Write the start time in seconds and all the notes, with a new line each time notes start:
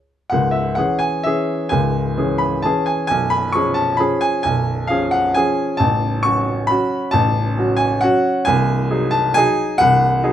0.30 C#1 C#2 F#5
0.51 E5
0.75 E3 C#4 G#4 F#5
0.99 G#5
1.23 E3 C#4 G#4 E5
1.69 C#1 C#2 G#5
2.17 E3 C#4 G#4
2.38 B5
2.62 E3 C#4 G#4 A5
2.86 G#5
3.07 B0 B1 G#5
3.30 B5
3.52 F3 C#4 G#4 C#6
3.74 A5
3.97 F3 C#4 G#4 B5
4.21 G#5
4.43 B0 B1 G#5
4.87 F3 C#4 G#4 F5
5.11 F#5
5.34 F3 C#4 G#4 G#5
5.77 A0 A1 A5
6.23 F#3 C#4 F#4 C#6
6.67 F#3 C#4 F#4 B5
7.11 A0 A1 A5
7.57 F#3 C#4 F#4
7.77 G#5
8.01 F#3 C#4 F#4 F#5
8.45 C1 C2 G#5
8.90 F#3 D#4 G#4
9.11 A5
9.34 F#3 D#4 G#4 G#5
9.78 C1 C2 F#5
10.23 F#3 D#4 G#4